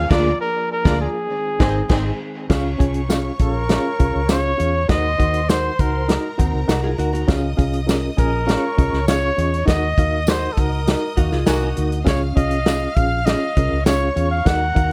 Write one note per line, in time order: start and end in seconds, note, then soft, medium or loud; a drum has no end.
0.00 1.28 F3 medium
0.00 2.46 G#4 medium
0.00 0.11 F5 loud
0.10 0.31 D2 loud
0.10 0.32 D3 loud
0.10 0.31 A#3 loud
0.10 1.30 A#3 medium
0.10 0.31 D4 loud
0.10 0.32 D4 loud
0.10 0.31 F4 loud
0.10 0.32 F4 loud
0.10 0.32 G#4 loud
0.10 0.30 D5 loud
0.10 0.39 D5 loud
0.10 0.32 D5 loud
0.10 0.30 A#5 loud
0.10 kick loud
0.10 snare loud
0.10 crash medium
0.41 0.68 A#4 loud
0.72 0.99 A#4 medium
0.85 1.06 D2 loud
0.85 1.05 A#3 medium
0.85 1.06 D4 loud
0.85 1.07 D4 loud
0.85 1.06 F4 loud
0.85 1.06 G#4 loud
0.85 1.06 D5 loud
0.85 1.06 F5 loud
0.85 1.06 A#5 loud
0.85 kick loud
0.85 snare loud
1.01 2.16 G#4 medium
1.30 2.49 D#3 medium
1.30 2.49 G#3 medium
1.30 2.49 C4 medium
1.59 1.80 G#1 loud
1.59 1.76 D#3 loud
1.59 1.80 C4 loud
1.59 1.81 C4 medium
1.59 1.76 C4 loud
1.59 1.80 D#4 medium
1.59 1.81 D#4 loud
1.59 1.81 G#4 loud
1.59 1.76 G#4 loud
1.59 1.81 G#4 loud
1.59 1.81 C5 medium
1.59 1.81 D#5 loud
1.59 kick loud
1.59 snare loud
1.89 2.10 G#1 loud
1.89 2.05 D#3 medium
1.89 2.05 C4 loud
1.89 2.11 C4 loud
1.89 2.10 D#4 loud
1.89 2.10 G#4 loud
1.89 2.05 G#4 loud
1.89 2.10 G#4 loud
1.89 2.11 C5 loud
1.89 2.10 D#5 loud
1.89 kick loud
1.89 snare loud
1.89 crash medium
2.50 2.75 C#2 medium
2.50 2.77 C#4 loud
2.50 2.71 F4 loud
2.50 2.71 G#4 loud
2.50 4.86 C#5 medium
2.50 2.71 F5 loud
2.50 4.86 C#6 medium
2.50 kick loud
2.50 snare loud
2.50 crash medium
2.50 tambourine medium
2.79 3.30 C2 medium
2.79 3.00 C#4 medium
2.79 3.01 F4 medium
2.79 3.01 G#4 medium
2.79 3.01 G#5 medium
2.79 kick medium
2.79 closed hi-hat medium
2.94 closed hi-hat medium
3.09 3.31 C#4 medium
3.09 3.31 F4 medium
3.09 3.31 G#4 medium
3.09 3.31 F5 medium
3.09 snare loud
3.09 closed hi-hat medium
3.09 tambourine medium
3.39 3.77 A#1 medium
3.39 3.61 C#4 medium
3.39 3.61 F4 medium
3.39 3.62 G#4 medium
3.39 4.27 A#4 medium
3.39 3.62 F5 medium
3.39 kick medium
3.39 closed hi-hat medium
3.69 3.91 C#4 medium
3.69 3.91 F4 medium
3.69 3.91 G#4 medium
3.69 3.91 F5 medium
3.69 snare loud
3.69 closed hi-hat medium
3.69 tambourine medium
3.99 4.12 C2 medium
3.99 4.21 C#4 medium
3.99 4.21 F4 medium
3.99 4.21 G#4 medium
3.99 4.21 F5 medium
3.99 kick medium
3.99 closed hi-hat medium
4.16 4.52 C#2 medium
4.29 4.50 C#4 medium
4.29 4.50 F4 medium
4.29 4.51 G#4 medium
4.29 4.86 C#5 medium
4.29 4.51 F5 loud
4.29 snare loud
4.29 closed hi-hat medium
4.29 tambourine medium
4.57 4.84 E2 medium
4.57 4.80 C#4 medium
4.57 4.80 F4 medium
4.57 4.80 G#4 medium
4.57 4.80 F5 medium
4.57 closed hi-hat medium
4.88 5.14 D#2 loud
4.88 5.75 D#3 medium
4.88 5.10 D#4 medium
4.88 5.10 F#4 medium
4.88 5.10 A#4 medium
4.88 6.07 C5 medium
4.88 5.51 D#5 loud
4.88 5.11 F#5 loud
4.88 6.07 C6 medium
4.88 kick loud
4.88 snare loud
4.88 closed hi-hat medium
4.88 tambourine medium
5.19 5.69 D#2 medium
5.19 5.40 D#4 medium
5.19 5.40 F#4 medium
5.19 5.40 A#4 medium
5.19 5.40 F#5 medium
5.19 kick medium
5.19 closed hi-hat medium
5.34 closed hi-hat medium
5.49 5.70 D#4 medium
5.49 5.70 F#4 medium
5.49 5.71 A#4 medium
5.49 5.81 C5 medium
5.49 5.71 F#5 medium
5.49 snare loud
5.49 closed hi-hat medium
5.49 tambourine medium
5.79 6.16 C#2 medium
5.79 6.01 D#4 medium
5.79 6.01 F#4 medium
5.79 6.39 A#4 medium
5.79 6.01 A#4 medium
5.79 6.01 F#5 medium
5.79 kick medium
5.79 closed hi-hat medium
6.08 6.30 D#4 medium
6.08 6.30 F#4 medium
6.08 7.26 A#4 medium
6.08 6.30 A#4 medium
6.08 6.30 D#5 loud
6.08 7.27 A#5 medium
6.08 snare loud
6.08 closed hi-hat medium
6.08 tambourine medium
6.38 6.52 D#2 medium
6.38 6.68 C4 medium
6.38 6.60 D#4 medium
6.38 6.67 D#4 medium
6.38 6.60 F#4 medium
6.38 6.60 A#4 medium
6.38 6.60 F#5 medium
6.38 kick medium
6.38 closed hi-hat medium
6.54 6.66 C#2 medium
6.68 6.93 C2 medium
6.68 6.89 D#4 loud
6.68 6.83 D#4 medium
6.68 6.90 F#4 loud
6.68 6.83 F#4 medium
6.68 6.90 A#4 medium
6.68 6.90 F#5 loud
6.68 snare loud
6.68 closed hi-hat medium
6.68 tambourine medium
6.83 6.98 F4 medium
6.83 6.98 G#4 medium
6.98 7.23 D2 medium
6.98 7.20 D#4 medium
6.98 7.12 F#4 medium
6.98 7.20 F#4 medium
6.98 7.12 A#4 medium
6.98 7.20 A#4 medium
6.98 7.21 F#5 loud
6.98 closed hi-hat medium
7.13 7.42 D#4 medium
7.13 7.42 F#4 medium
7.13 closed hi-hat medium
7.28 7.53 C#2 medium
7.28 7.50 C#4 loud
7.28 7.50 F4 loud
7.28 7.50 G#4 loud
7.28 8.46 D#5 medium
7.28 7.50 F5 loud
7.28 8.46 D#6 medium
7.28 kick loud
7.28 snare loud
7.28 closed hi-hat medium
7.28 tambourine medium
7.57 8.08 C2 medium
7.57 7.79 C#4 medium
7.57 7.79 F4 medium
7.57 7.79 G#4 medium
7.57 7.79 F5 medium
7.57 kick medium
7.57 closed hi-hat medium
7.73 closed hi-hat medium
7.86 8.09 C#4 medium
7.86 8.09 F4 medium
7.86 8.09 G#4 medium
7.86 8.09 A#4 loud
7.86 snare loud
7.86 closed hi-hat medium
7.86 tambourine medium
8.17 8.55 A#1 medium
8.17 8.39 C#4 medium
8.17 8.39 F4 medium
8.17 8.39 G#4 medium
8.17 9.04 A#4 medium
8.17 8.39 G#5 medium
8.17 kick medium
8.17 closed hi-hat medium
8.47 8.69 C#4 medium
8.47 8.69 F4 medium
8.47 8.69 G#4 medium
8.47 9.65 C#5 medium
8.47 8.69 F5 loud
8.47 9.65 C#6 medium
8.47 snare loud
8.47 closed hi-hat medium
8.47 tambourine medium
8.77 8.91 C2 medium
8.77 8.99 C#4 medium
8.77 8.99 F4 medium
8.77 8.99 G#4 medium
8.77 8.99 D#5 medium
8.77 kick medium
8.77 closed hi-hat medium
8.93 9.30 C#2 medium
8.93 snare soft
9.08 9.29 C#4 medium
9.08 9.29 F4 medium
9.08 9.30 G#4 medium
9.08 9.64 C#5 loud
9.08 9.29 F5 loud
9.08 snare loud
9.08 closed hi-hat medium
9.08 tambourine medium
9.37 9.63 E2 medium
9.37 9.58 C#4 medium
9.37 9.59 F4 medium
9.37 9.59 G#4 medium
9.37 9.59 D#5 medium
9.37 closed hi-hat medium
9.54 closed hi-hat medium
9.66 9.92 D#2 loud
9.66 10.53 D#3 medium
9.66 9.88 D#4 loud
9.66 9.88 F#4 medium
9.66 9.88 A#4 loud
9.66 12.02 D#5 medium
9.66 10.30 D#5 loud
9.66 9.89 F#5 loud
9.66 12.02 D#6 medium
9.66 kick medium
9.66 snare loud
9.66 closed hi-hat medium
9.66 tambourine medium
9.98 10.47 D#2 medium
9.98 10.19 D#4 medium
9.98 10.19 F#4 medium
9.98 10.19 A#4 medium
9.98 10.19 F5 medium
9.98 kick medium
9.98 closed hi-hat medium
10.27 10.48 D#4 medium
10.27 10.49 F#4 medium
10.27 10.49 A#4 medium
10.27 10.54 C5 medium
10.27 10.49 F#5 medium
10.27 snare loud
10.27 closed hi-hat medium
10.27 tambourine medium
10.52 10.62 A4 medium
10.57 10.94 C#2 medium
10.57 10.78 D#4 medium
10.57 10.78 F#4 medium
10.57 10.78 A#4 medium
10.57 11.19 A#4 medium
10.57 10.79 F#5 medium
10.57 kick medium
10.57 closed hi-hat medium
10.87 11.09 D#4 medium
10.87 11.09 F#4 medium
10.87 11.09 A#4 medium
10.87 11.09 D#5 loud
10.87 snare loud
10.87 closed hi-hat medium
10.87 tambourine medium
11.17 11.30 D#2 medium
11.17 11.30 D#3 medium
11.17 11.30 A#3 medium
11.17 11.39 D#4 medium
11.17 11.32 D#4 medium
11.17 11.31 F#4 medium
11.17 11.39 F#4 medium
11.17 11.30 F#4 medium
11.17 11.39 A#4 medium
11.17 11.39 F5 medium
11.17 kick medium
11.17 closed hi-hat medium
11.32 11.45 C#2 medium
11.32 11.46 F4 medium
11.32 11.46 G#4 medium
11.32 snare soft
11.46 11.72 C2 medium
11.46 11.90 D#3 medium
11.46 11.90 A#3 medium
11.46 11.68 D#4 loud
11.46 11.68 F#4 loud
11.46 11.90 F#4 loud
11.46 11.61 F#4 medium
11.46 11.68 A#4 loud
11.46 11.61 A#4 medium
11.46 11.68 G#5 loud
11.46 snare loud
11.46 closed hi-hat medium
11.46 tambourine medium
11.62 12.05 D#4 medium
11.62 12.05 F#4 medium
11.76 12.02 D2 medium
11.76 11.98 D#4 medium
11.76 11.98 F#4 medium
11.76 11.98 A#4 medium
11.76 11.98 F#5 medium
11.76 closed hi-hat medium
11.92 closed hi-hat medium
12.05 12.31 C#2 loud
12.05 12.35 C#4 medium
12.05 12.27 F4 medium
12.05 12.27 G#4 medium
12.05 12.21 C#5 medium
12.05 13.82 F5 medium
12.05 12.27 F5 loud
12.05 13.81 F6 medium
12.05 kick loud
12.05 snare loud
12.05 closed hi-hat medium
12.05 tambourine medium
12.36 12.86 C2 medium
12.36 12.57 C#4 medium
12.36 12.58 F4 medium
12.36 12.58 G#4 medium
12.36 12.97 D#5 medium
12.36 12.58 F5 medium
12.36 kick medium
12.36 closed hi-hat medium
12.51 closed hi-hat medium
12.66 12.87 C#4 medium
12.66 12.87 F4 medium
12.66 12.87 G#4 medium
12.66 12.88 F5 medium
12.66 snare loud
12.66 closed hi-hat medium
12.66 tambourine medium
12.95 13.34 A#1 loud
12.95 13.18 C#4 medium
12.95 13.18 F4 medium
12.95 13.18 G#4 medium
12.95 13.27 F5 medium
12.95 13.18 F5 medium
12.95 kick medium
12.95 closed hi-hat medium
13.25 13.47 C#4 medium
13.25 13.48 F4 medium
13.25 13.48 G#4 medium
13.25 13.86 D#5 loud
13.25 13.48 F5 loud
13.25 snare loud
13.25 closed hi-hat medium
13.25 tambourine medium
13.57 13.69 C2 medium
13.57 13.78 C#4 medium
13.57 13.78 F4 medium
13.57 13.78 G#4 medium
13.57 13.78 A#4 medium
13.57 kick medium
13.57 closed hi-hat medium
13.72 14.09 C#2 medium
13.86 14.08 C#4 medium
13.86 14.08 F4 medium
13.86 14.08 G#4 medium
13.86 14.45 C#5 medium
13.86 14.28 C#5 medium
13.86 14.08 F5 loud
13.86 14.45 C#6 medium
13.86 snare loud
13.86 closed hi-hat loud
13.86 tambourine medium
14.16 14.41 E2 medium
14.16 14.37 C#4 medium
14.16 14.37 F4 medium
14.16 14.37 G#4 medium
14.16 14.37 F5 medium
14.16 closed hi-hat medium
14.31 14.48 F5 medium
14.45 14.71 D#2 loud
14.45 14.92 D#3 medium
14.45 14.67 D#4 loud
14.45 14.67 F#4 medium
14.45 14.67 A#4 medium
14.45 14.92 A#4 medium
14.45 14.67 F#5 loud
14.45 14.92 F#5 loud
14.45 14.92 A#5 medium
14.45 kick loud
14.45 snare loud
14.45 closed hi-hat medium
14.45 tambourine medium
14.75 14.92 D#2 medium
14.75 14.92 D#4 medium
14.75 14.92 F#4 medium
14.75 14.92 A#4 medium
14.75 14.92 F5 medium
14.75 kick medium
14.75 closed hi-hat medium